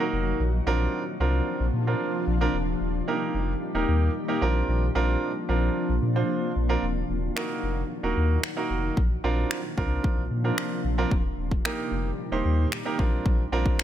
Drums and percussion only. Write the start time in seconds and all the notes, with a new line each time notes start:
7.37 finger snap
8.43 finger snap
8.97 kick
9.51 finger snap
9.78 kick
10.04 kick
10.58 finger snap
11.11 kick
11.51 kick
11.65 finger snap
12.72 finger snap
12.99 kick
13.26 kick
13.66 kick
13.79 finger snap